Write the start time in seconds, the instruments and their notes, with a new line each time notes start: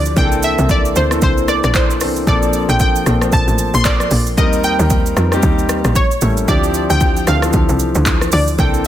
Already playing: log drum bass D2, grand piano E3 F3 C4 D4 E4 G4, synth pluck D5
0.05 shaker
0.16 log drum bass C2, grand piano E3 A#3 C4 D4 G#4, synth pluck G5, kick, shaker
0.25 grand piano A4
0.32 shaker
0.43 synth pluck E5, shaker
0.58 log drum bass C2, shaker
0.69 synth pluck D5, kick, shaker
0.85 shaker
0.95 log drum bass D2, grand piano E3 A#3 C4 D4 E4, synth pluck C5, shaker
1.11 grand piano E3 A#3 C4 D4 A4, cross-stick, shaker
1.22 log drum bass C2, synth pluck C5, kick, shaker
1.38 shaker
1.48 synth pluck D5, cross-stick, shaker
1.64 log drum bass A#1, synth pluck D5, cross-stick, shaker
1.75 synth pluck C5, kick, clap, shaker
1.90 shaker
2.00 log drum bass C2, grand piano E3 A#3 C4 D4 A4, cross-stick, open hi-hat, shaker
2.16 shaker
2.27 log drum bass A#1, grand piano F3 A#3 C4 D4 A4, synth pluck D5, kick, shaker
2.42 shaker
2.53 shaker
2.69 log drum bass A#1, synth pluck G5, shaker
2.80 synth pluck G5, kick, shaker
2.96 shaker
3.06 log drum bass A#1, grand piano F3 A#3 C4 D4 A4, cross-stick, shaker
3.21 grand piano F3 A#3 C4 D4 C5, cross-stick, shaker
3.32 log drum bass A#1, synth pluck A5, kick, shaker
3.48 log drum bass A1, shaker
3.58 shaker
3.74 log drum bass A#1, synth pluck C6, shaker
3.85 synth pluck D5, kick, clap, shaker
4.00 cross-stick, shaker
4.11 log drum bass A#1, open hi-hat, shaker
4.26 shaker
4.37 log drum bass D#2, grand piano G3 A#3 C4 D#4 A#4, synth pluck D#5, kick, shaker
4.53 shaker
4.64 synth pluck G5, shaker
4.79 log drum bass D#2, shaker
4.90 kick, shaker
5.06 shaker
5.16 log drum bass F2, grand piano G3 A#3 C4 D#4 A#4, cross-stick, shaker
5.31 grand piano G3 A#3 C4 D#4 G4, cross-stick, shaker
5.43 log drum bass D#2, kick, shaker
5.59 shaker
5.69 cross-stick, shaker
5.84 log drum bass A#1, cross-stick, shaker
5.96 synth pluck C#5, kick, shaker
6.11 shaker
6.21 log drum bass A1, grand piano G3 A#3 C#4 E4 A4, shaker
6.37 shaker
6.48 log drum bass D2, grand piano F3 C4 D4 E4 G4, synth pluck D5, kick, shaker
6.63 shaker
6.74 shaker
6.90 log drum bass D2, synth pluck G5, shaker
7.00 kick, shaker
7.17 shaker
7.26 log drum bass D2, grand piano F3 C4 D4 E4 A4, synth pluck F5, cross-stick, shaker
7.42 grand piano E3 F3 C4 D4 A4, cross-stick, shaker
7.53 log drum bass D2, kick, shaker
7.69 log drum bass C2, shaker
7.79 shaker
7.95 log drum bass D2, shaker
8.06 kick, clap, shaker
8.21 cross-stick, shaker
8.32 log drum bass D2, synth pluck D5, open hi-hat, shaker
8.47 shaker
8.58 log drum bass C2, grand piano E3 A#3 C4 D4 A4, synth pluck G5, kick, shaker
8.74 shaker